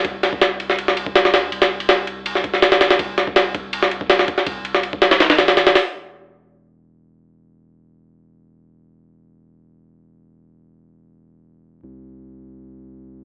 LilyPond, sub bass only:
\new Staff \with { instrumentName = "Sub bass" } { \clef bass \time 4/4 \key c \lydian \tempo 4 = 163 c,2.~ c,8 d,8 | c,2. g,,4 | c,2.~ c,8 r8 | c,2~ c,8 a,,4 r8 |
e,,1~ | e,,1~ | e,,1~ | e,,1 |
c,1 | }